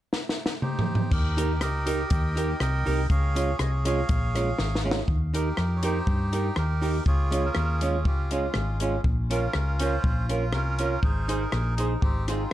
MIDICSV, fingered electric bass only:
0, 0, Header, 1, 2, 480
1, 0, Start_track
1, 0, Tempo, 495868
1, 1078, Time_signature, 4, 2, 24, 8
1, 12129, End_track
2, 0, Start_track
2, 0, Title_t, "Fingered electric bass"
2, 0, Program_c, 0, 33
2, 1081, Note_on_c, 0, 39, 98
2, 1559, Note_off_c, 0, 39, 0
2, 1559, Note_on_c, 0, 37, 88
2, 1967, Note_off_c, 0, 37, 0
2, 2044, Note_on_c, 0, 39, 85
2, 2450, Note_off_c, 0, 39, 0
2, 2522, Note_on_c, 0, 36, 92
2, 2734, Note_off_c, 0, 36, 0
2, 2775, Note_on_c, 0, 36, 94
2, 2967, Note_off_c, 0, 36, 0
2, 3002, Note_on_c, 0, 37, 102
2, 3408, Note_off_c, 0, 37, 0
2, 3480, Note_on_c, 0, 36, 85
2, 3887, Note_off_c, 0, 36, 0
2, 3966, Note_on_c, 0, 34, 88
2, 4371, Note_off_c, 0, 34, 0
2, 4444, Note_on_c, 0, 32, 96
2, 4849, Note_off_c, 0, 32, 0
2, 4918, Note_on_c, 0, 39, 103
2, 5326, Note_off_c, 0, 39, 0
2, 5399, Note_on_c, 0, 41, 79
2, 5807, Note_off_c, 0, 41, 0
2, 5877, Note_on_c, 0, 43, 92
2, 6285, Note_off_c, 0, 43, 0
2, 6356, Note_on_c, 0, 39, 98
2, 6765, Note_off_c, 0, 39, 0
2, 6836, Note_on_c, 0, 37, 95
2, 7244, Note_off_c, 0, 37, 0
2, 7319, Note_on_c, 0, 39, 90
2, 7797, Note_off_c, 0, 39, 0
2, 7797, Note_on_c, 0, 37, 84
2, 8205, Note_off_c, 0, 37, 0
2, 8277, Note_on_c, 0, 32, 99
2, 8685, Note_off_c, 0, 32, 0
2, 8755, Note_on_c, 0, 34, 102
2, 9164, Note_off_c, 0, 34, 0
2, 9242, Note_on_c, 0, 37, 83
2, 9648, Note_off_c, 0, 37, 0
2, 9718, Note_on_c, 0, 34, 96
2, 10207, Note_off_c, 0, 34, 0
2, 10207, Note_on_c, 0, 36, 99
2, 10611, Note_off_c, 0, 36, 0
2, 10675, Note_on_c, 0, 32, 100
2, 11084, Note_off_c, 0, 32, 0
2, 11160, Note_on_c, 0, 34, 89
2, 11566, Note_off_c, 0, 34, 0
2, 11640, Note_on_c, 0, 32, 88
2, 12046, Note_off_c, 0, 32, 0
2, 12129, End_track
0, 0, End_of_file